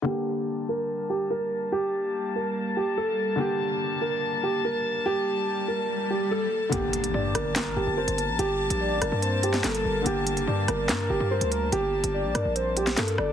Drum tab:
HH |----------------|----------------|----------------|----------------|
CP |----------------|----------------|----------------|----------------|
SD |----------------|----------------|----------------|----------------|

HH |x-xx--x-x----xx-|x--x--x-x-x-xx--|x-xx--x-x----xx-|x--x--x-x-x-xx--|
CP |--------x-------|------------x---|--------x-------|------------x---|
SD |------r-o-------|------r----oo---|------r-o-------|------r----oo-r-|